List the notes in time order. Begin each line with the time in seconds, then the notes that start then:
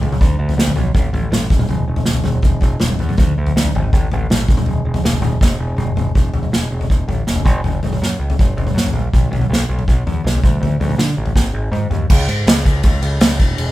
0.01 C#2, floor tom
0.12 mid tom
0.21 D2, kick, floor tom
0.39 D2
0.49 floor tom
0.57 D2, snare
0.67 floor tom
0.76 B1, floor tom
0.94 A1, kick, floor tom
1.13 A1, floor tom
1.31 A1, snare, mid tom
1.50 E1, kick, floor tom
1.59 mid tom
1.69 E1, floor tom
1.88 E1
1.96 floor tom
2.06 E1, snare
2.14 floor tom
2.24 E1, floor tom, mid tom
2.43 E1, kick, floor tom
2.61 E1, kick, floor tom
2.80 E1, snare, mid tom
2.89 floor tom
2.99 E2, floor tom
3.09 mid tom
3.18 D2, kick, floor tom
3.38 D2
3.47 floor tom
3.56 D2, snare
3.65 floor tom
3.75 G#1, floor tom
3.93 A1, kick, floor tom
4.12 A1, floor tom
4.30 A1, snare, mid tom
4.48 E1, kick, floor tom
4.57 mid tom
4.66 E1, floor tom
4.85 E1
4.94 floor tom
5.04 E1, snare
5.13 floor tom
5.21 E1, floor tom, mid tom
5.41 E1, kick, snare
5.59 E1
5.77 E1, mid tom
5.96 E1, floor tom
6.15 E1, kick, floor tom
6.33 E1, floor tom
6.43 mid tom
6.52 E1, snare
6.71 E1
6.81 floor tom
6.90 E1, kick
7.08 A1, floor tom
7.27 E1, snare
7.36 floor tom
7.45 F#1, kick, mid tom
7.64 F#1, floor tom
7.83 F#1, floor tom
7.93 mid tom
8.02 F#2, snare
8.19 C#2
8.30 floor tom
8.39 F#1, kick, mid tom
8.56 F#1, floor tom
8.67 mid tom
8.74 F#2, snare
8.87 floor tom
8.93 A#1, mid tom
9.14 B1, kick, floor tom
9.31 B1, floor tom
9.41 mid tom
9.50 B1, snare
9.69 B1
9.79 floor tom
9.88 B1, kick
10.07 E2, floor tom
10.24 B1, snare
10.35 floor tom
10.44 D2, kick, mid tom
10.61 D2, floor tom
10.80 D2, floor tom
10.90 mid tom
10.98 D3, snare
11.17 A1
11.26 floor tom
11.36 G#1, kick, snare
11.54 G#1
11.72 G#2, mid tom
11.90 D#2, floor tom
12.10 C#2, kick, crash
12.28 G#2, ride
12.46 C#2, snare, ride
12.65 C#2, kick, ride
12.83 C#2, kick, ride
13.02 C#2, ride
13.21 C#2, snare, ride
13.40 E1, kick, ride
13.57 E1, ride